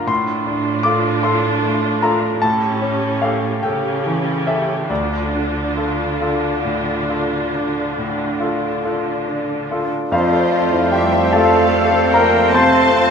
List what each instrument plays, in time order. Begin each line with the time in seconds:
Already playing: grand piano D3 D4 F4 A#4 A#5
0.07 grand piano A2 C6, cello section A2, viola section D4 F4
0.47 grand piano D4
0.83 grand piano F4 A4 D6
1.23 grand piano F4 A4 C6
1.63 grand piano A3
2.02 grand piano F4 A4 A#5
2.41 cello section A2, grand piano A2 A5, viola section C#4 G4
2.82 grand piano C#4
3.22 grand piano G4 A4 F5
3.62 cello section C#3, viola section C#4 G4, grand piano G4 A4 G5
4.06 grand piano E3
4.47 grand piano G4 A4 E5
4.90 grand piano D2 D5, cello section D3, viola section D4 F4
5.34 grand piano D4
5.77 grand piano F4 A4
6.21 grand piano F4 A4
6.65 grand piano A2
7.09 grand piano F4 A4
7.55 grand piano D4
7.98 grand piano A2
8.40 grand piano F4 A4
8.84 grand piano F4 A4
9.27 grand piano D4
9.71 grand piano F4 A4
10.12 grand piano F2 F4 C5 F5, double bass section F2, cello section F3, bassoon A3, french horn section A3 C4, violin section C4 F4 C5, viola section F4, trumpet section F4, clarinet C5, cor anglais D5, flute F5
10.32 grand piano A4
10.52 grand piano F4
10.72 grand piano E4
10.92 cello section G3, grand piano F4 G4 G5, viola section G4, trumpet section G4, violin section E5
11.13 grand piano C5
11.32 cello section A3, grand piano F4 A4 F5 A5, violin section G4 F5, viola section A4, trumpet section A4
11.53 grand piano C4
11.73 grand piano A4
11.93 grand piano C4
12.12 cello section A#3, grand piano F4 A#4 A#5, viola section A#4, trumpet section A#4, violin section G5
12.34 grand piano C5
12.53 grand piano C3 C5 A5 C6, cello section C4, violin section F4 A5, trumpet section C5, viola section C5, cor anglais C5
12.74 grand piano A4
12.96 grand piano F4